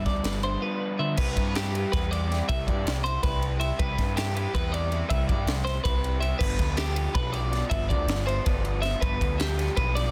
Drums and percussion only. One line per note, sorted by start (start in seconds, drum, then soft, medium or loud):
0.06 kick medium
0.06 snare soft
0.06 ride medium
0.24 snare loud
0.24 ride loud
0.43 ride medium
1.17 kick loud
1.17 crash loud
1.37 kick medium
1.37 ride medium
1.55 snare loud
1.55 ride loud
1.75 ride medium
1.93 kick loud
1.93 snare soft
1.93 ride loud
2.13 ride medium
2.32 snare soft
2.32 ride medium
2.49 kick loud
2.49 ride loud
2.68 kick medium
2.68 ride medium
2.87 snare loud
2.87 ride loud
3.06 ride medium
3.23 kick loud
3.23 snare soft
3.23 ride loud
3.42 ride medium
3.61 ride medium
3.80 kick loud
3.80 ride loud
3.98 kick medium
3.98 snare soft
3.98 ride medium
4.17 snare loud
4.17 ride loud
4.37 ride loud
4.55 kick loud
4.55 ride loud
4.74 ride medium
4.92 ride medium
5.10 kick loud
5.10 ride loud
5.29 kick medium
5.29 ride medium
5.47 snare loud
5.47 ride loud
5.67 snare soft
5.67 ride medium
5.85 kick loud
5.85 ride loud
6.04 ride medium
6.22 ride medium
6.41 kick loud
6.41 crash loud
6.59 kick medium
6.59 snare soft
6.59 ride medium
6.77 snare loud
6.77 ride loud
6.96 ride loud
7.15 kick loud
7.15 ride loud
7.33 ride medium
7.53 snare soft
7.53 ride medium
7.71 kick loud
7.71 ride loud
7.90 kick medium
7.90 ride medium
8.08 snare loud
8.08 ride loud
8.28 ride medium
8.46 kick loud
8.46 ride loud
8.65 ride medium
8.83 snare soft
8.83 ride medium
9.02 kick loud
9.02 ride loud
9.21 kick medium
9.21 ride medium
9.40 snare loud
9.40 ride loud
9.59 snare soft
9.59 ride medium
9.77 kick loud
9.77 ride loud
9.96 snare soft
9.96 ride medium